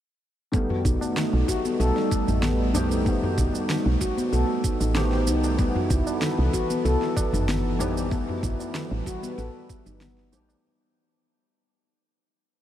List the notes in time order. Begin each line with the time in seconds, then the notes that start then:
0.52 D#3 A3 B3 A4, kick, shaker
0.56 G3
0.69 D#4 F#4, tabla ge
0.85 B1 D#4, kick, tabla tin, shaker
0.92 G3
1.01 tabla na, tabla tin, shaker
1.17 snare, shaker
1.33 B1
1.48 F#4, kick, shaker
1.65 B3, shaker
1.80 B1 A4, shaker
1.96 snare, tabla tin
2.11 kick, tabla na, shaker
2.28 A1 D#4, tabla ge, shaker
2.43 B3, snare, shaker
2.73 B1 D#3 A3 B3 C4 D#4 G4, tabla na, tabla tin, tabla ge, shaker
2.91 shaker
3.04 D#3 A3 B3, kick, shaker
3.08 G3
3.23 F#4, tabla ge
3.37 B1 D#4, kick, tabla tin, shaker
3.53 tabla na, tabla tin, shaker
3.70 snare, shaker
3.86 B1
4.01 F#4, kick, shaker
4.17 B3, shaker
4.33 B1 A4, shaker
4.64 kick, shaker
4.80 A1 D#4, tabla na, shaker
4.94 D#3 A3 B3 C4 G4, snare, shaker
5.12 snare
5.27 C2 D#4, shaker
5.44 tabla na, shaker
5.57 E3 G3 B3, kick, shaker
5.74 F#4 A4, tabla ge
5.81 E3
5.87 C2 B4, kick, tabla tin, shaker
5.91 E4
6.07 tabla na, tabla tin, shaker
6.22 snare, shaker
6.38 C2
6.53 F#4, kick, shaker
6.70 B3, shaker
6.85 C2 A4, shaker
7.01 snare, tabla tin
7.16 kick, tabla na, shaker
7.33 G1 D#4, tabla ge, shaker
7.48 B3, snare, shaker
7.79 A1 E3 G3 B3 C4 D#4 G4, tabla na, tabla tin, tabla ge, shaker
7.97 shaker
8.09 E3 G3 A3 B3, kick, shaker
8.28 F#4, tabla ge
8.43 A1 E4, kick, tabla tin, shaker
8.59 tabla na, tabla tin, shaker
8.75 G3, snare, shaker
8.81 B4
8.91 A1
9.06 F#4, kick, shaker
9.23 B3, shaker
9.38 A1 A4, shaker
9.70 kick, shaker
9.86 G1 D#4, tabla na, shaker
10.01 B3, snare, shaker
10.18 snare
10.32 A1 E3 G3 A3 C4 D#4 G4, shaker
10.49 tabla na, shaker